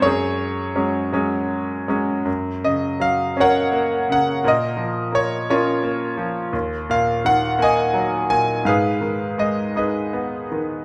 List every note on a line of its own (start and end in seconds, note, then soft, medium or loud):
0.02 2.23 F#2 medium
0.02 1.87 G#4 medium
0.02 1.86 C#5 medium
0.75 1.11 F#3 soft
0.75 1.12 G#3 soft
0.75 1.12 C#4 soft
1.13 1.87 F#3 soft
1.13 1.87 G#3 soft
1.13 1.87 C#4 soft
1.88 2.25 F#3 soft
1.88 2.25 G#3 soft
1.88 2.26 C#4 soft
2.25 4.39 F#2 soft
2.64 4.05 C#3 soft
2.64 3.02 D#5 medium
3.00 4.39 F#3 soft
3.00 3.35 F5 medium
3.37 4.40 C#4 soft
3.37 4.41 C#5 medium
3.41 4.42 A#4 medium
3.41 4.07 F#5 medium
3.72 4.41 A#3 soft
4.10 4.43 C#3 soft
4.10 4.46 F#5 medium
4.44 6.50 A#2 medium
4.44 5.45 A#4 soft
4.44 5.17 D#5 medium
4.77 6.13 F3 soft
5.12 5.82 A#3 soft
5.12 5.49 C#5 medium
5.50 6.52 C#4 soft
5.50 6.51 F4 soft
5.50 6.51 A#4 soft
5.50 6.24 C#5 medium
5.83 6.52 A#3 soft
6.17 6.52 F3 soft
6.53 8.62 D#2 medium
6.90 8.26 A#2 soft
6.90 7.27 F5 medium
7.25 8.62 D#3 soft
7.25 7.61 F#5 medium
7.59 8.63 A#3 medium
7.59 8.29 G#5 medium
7.63 8.64 D#5 medium
7.94 8.64 F#3 soft
8.30 8.65 A#2 soft
8.30 8.67 G#5 medium
8.65 10.85 G#2 soft
8.65 9.74 G#4 medium
8.65 9.74 B4 soft
8.65 9.36 F5 medium
9.01 10.47 D#3 soft
9.38 10.85 G#3 soft
9.38 9.75 D#5 medium
9.76 10.85 D#4 soft
9.76 10.85 G#4 soft
9.76 10.85 B4 soft
9.76 10.57 D#5 soft
10.13 10.85 B3 soft
10.52 10.85 D#3 soft